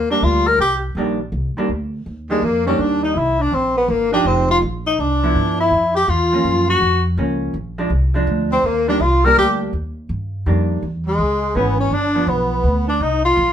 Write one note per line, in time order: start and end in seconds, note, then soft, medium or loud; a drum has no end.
0.00 0.21 D#2 medium
0.00 0.10 A#3 medium
0.10 0.57 G3 medium
0.10 0.57 A#3 medium
0.10 0.26 D4 medium
0.10 0.57 D4 medium
0.10 0.25 D4 medium
0.22 0.58 D2 medium
0.22 0.49 F4 medium
0.47 0.60 A#4 medium
0.47 0.59 A#4 medium
0.58 0.94 C2 medium
0.58 0.82 G4 medium
0.58 0.75 G4 medium
0.95 1.31 A#1 medium
0.95 1.18 D#3 medium
0.95 1.18 G3 medium
0.95 1.18 A#3 medium
0.95 1.19 D4 medium
1.32 1.54 C2 medium
1.57 1.68 D#3 medium
1.57 1.69 G3 medium
1.57 1.69 A#3 medium
1.57 1.69 D4 medium
1.57 muted upright bass stroke soft
1.69 2.05 D2 medium
2.06 2.41 D#2 medium
2.29 2.41 D#3 medium
2.29 2.41 G3 medium
2.29 2.44 G#3 medium
2.29 2.46 G#3 medium
2.29 2.41 A#3 medium
2.29 2.42 D4 medium
2.42 2.77 F2 medium
2.42 2.65 A#3 medium
2.42 2.67 A#3 medium
2.66 3.13 D#3 medium
2.66 3.13 G3 medium
2.66 3.13 A#3 medium
2.66 2.79 C#4 medium
2.66 2.83 C#4 medium
2.66 3.14 D4 medium
2.78 3.14 D#2 medium
2.78 3.02 D4 medium
2.78 3.04 D4 medium
3.03 3.16 D#4 medium
3.03 3.20 D#4 medium
3.14 3.51 C2 medium
3.14 3.41 E4 medium
3.18 3.43 E4 medium
3.39 3.53 D4 medium
3.39 3.56 D4 medium
3.52 3.87 A#1 medium
3.52 3.76 C4 medium
3.52 3.77 C4 medium
3.77 3.90 B3 medium
3.77 3.92 B3 medium
3.88 4.24 G1 medium
3.88 4.11 A#3 medium
3.88 4.13 A#3 medium
4.12 4.59 F3 medium
4.12 4.59 G#3 medium
4.12 4.27 D4 medium
4.12 4.29 D4 medium
4.12 4.60 D#4 medium
4.12 4.60 G4 medium
4.25 4.60 F1 medium
4.25 4.49 C4 medium
4.25 4.50 C4 medium
4.50 4.61 F4 medium
4.50 4.58 F4 medium
4.62 4.97 A#1 medium
4.86 5.01 D#4 medium
4.99 5.34 C2 medium
4.99 5.59 D4 medium
5.23 5.69 F3 medium
5.23 5.70 B3 medium
5.23 5.70 E4 medium
5.35 5.70 G2 medium
5.60 5.93 E4 medium
5.71 6.07 F2 medium
5.95 6.09 G4 medium
5.95 6.11 G4 medium
6.08 6.43 E2 medium
6.08 6.67 F4 medium
6.08 6.69 F4 medium
6.32 6.79 F3 medium
6.32 6.79 A#3 medium
6.32 6.79 C#4 medium
6.44 6.80 F#2 medium
6.68 7.02 F#4 medium
6.68 7.03 F#4 medium
6.81 7.16 F2 medium
7.17 7.53 C#2 medium
7.17 7.54 F3 soft
7.17 7.54 A#3 medium
7.17 7.55 C#4 medium
7.54 7.89 A#1 medium
7.78 7.89 F3 medium
7.78 7.89 G#3 medium
7.78 7.90 D4 medium
7.90 8.26 C2 medium
8.14 8.61 F3 medium
8.14 8.61 G#3 medium
8.14 8.62 D4 medium
8.27 8.62 D2 medium
8.51 8.66 C4 medium
8.51 8.68 C4 medium
8.63 8.99 D#2 medium
8.63 8.87 A#3 medium
8.63 8.89 A#3 medium
8.88 8.99 D#3 medium
8.88 8.99 G3 medium
8.88 8.99 A#3 medium
8.88 9.02 D4 medium
8.88 8.99 D4 medium
8.88 9.03 D4 medium
9.00 9.35 C2 medium
9.00 9.26 F4 medium
9.00 9.27 F4 medium
9.25 9.71 G3 medium
9.25 9.71 A#3 medium
9.25 9.71 D4 medium
9.25 9.37 A#4 medium
9.25 9.37 A#4 loud
9.35 9.71 D2 medium
9.35 9.52 G4 medium
9.35 9.60 G4 medium
9.73 10.08 D#2 medium
10.09 10.45 G2 medium
10.46 10.81 F2 medium
10.46 10.83 D#3 soft
10.46 10.83 G3 soft
10.46 10.83 A#3 soft
10.46 10.83 D4 soft
10.82 11.18 E2 medium
11.06 11.56 G#3 medium
11.06 11.58 G#3 medium
11.18 11.54 C#2 medium
11.54 11.90 G#1 medium
11.54 11.92 E3 soft
11.54 11.78 B3 medium
11.54 11.80 B3 medium
11.54 11.92 B3 soft
11.54 11.92 C#4 soft
11.54 11.93 G#4 medium
11.78 11.92 C#4 medium
11.78 11.95 C#4 medium
11.91 12.26 G1 medium
11.91 12.30 D4 medium
11.91 12.31 D4 medium
12.15 12.62 F3 medium
12.15 12.62 B3 medium
12.27 12.63 B1 medium
12.27 12.87 B3 medium
12.27 12.89 B3 medium
12.64 12.99 D2 medium
12.87 13.03 D4 medium
12.87 13.04 D4 medium
13.00 13.36 C2 medium
13.00 13.24 D#4 medium
13.25 13.53 F4 medium
13.37 13.53 A#1 medium